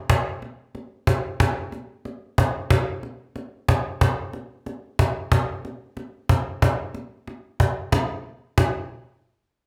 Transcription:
0.10 cajon bass
0.42 cajon slap
0.75 cajon slap
1.07 cajon bass
1.40 cajon bass
1.72 cajon slap
2.05 cajon slap
2.38 cajon bass
2.70 cajon bass
3.03 cajon slap
3.36 cajon slap
3.69 cajon bass
4.01 cajon bass
4.33 cajon slap
4.66 cajon slap
4.99 cajon bass
5.32 cajon bass
5.65 cajon slap
5.97 cajon slap
6.29 cajon bass
6.62 cajon bass
6.94 cajon slap
7.27 cajon slap
7.60 cajon bass
7.92 cajon bass, cajon slap
8.58 cajon bass

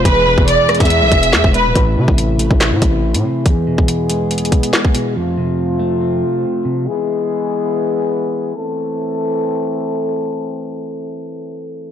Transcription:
0.05 E1 E3 G#3 B3 G#4 B4, kick, closed hi-hat
0.26 B2
0.38 E1, kick
0.48 D5, closed hi-hat
0.69 G#3, cross-stick, closed hi-hat
0.75 closed hi-hat
0.80 E2 E5, kick, closed hi-hat
0.85 closed hi-hat
0.90 B3, closed hi-hat
1.01 B1
1.12 E1, kick, closed hi-hat
1.23 closed hi-hat
1.33 E2, snare, clap
1.44 E1, kick
1.54 B2 B4, closed hi-hat
1.65 D1
1.75 A1 A2 C3 E3 A3 E4, kick, closed hi-hat
1.97 C3
2.08 A1, kick
2.18 closed hi-hat
2.39 A3, closed hi-hat
2.51 A1, kick
2.61 C4, snare, clap, closed hi-hat
2.72 A2
2.82 A1, kick, closed hi-hat
3.14 A2, closed hi-hat
3.24 C3
3.46 E2 G#3 B3 G#4, kick, closed hi-hat
3.67 B2
3.78 kick
3.88 closed hi-hat
4.10 G#3, closed hi-hat
4.31 B3, closed hi-hat
4.38 closed hi-hat
4.45 closed hi-hat
4.52 kick, closed hi-hat
4.63 closed hi-hat
4.73 snare, clap
4.85 kick
4.94 B2, closed hi-hat
5.16 F2 C3 F3 A3 F4
5.38 C3
5.79 A3
6.01 C4
6.65 C3
6.86 E3 G#3 B3 G#4
8.56 E3 A3 C4 A4

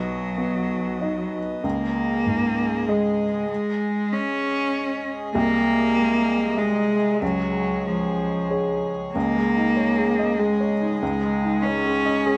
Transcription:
Already playing: B1 F#3 B3 F#4 D#5
0.38 B3
1.01 D#4 D#5
1.64 C#2 G#3 A#3 G#4
2.26 G#2
2.88 G#3 G#4 D#5
3.50 G#3
4.12 C#4
5.34 C2 A#3 D#5
5.96 G#3
6.57 G#3 G#4 D#5
7.20 C#2 F#3 G#3 G#4 C#5
7.86 F3 G#3
8.50 G#4 C#5
9.15 C#2 G#3 A#3 G#4 D#5
9.36 G#3
9.57 D#4
9.77 C#5
9.98 G#4
10.19 D#5
10.39 G#3 G#4
10.60 C#5
10.81 D#4
11.01 C#2 G#3
11.23 G#3
11.44 D#4
11.63 C#4 C#5
11.86 G#4
12.06 D#5
12.26 G#4

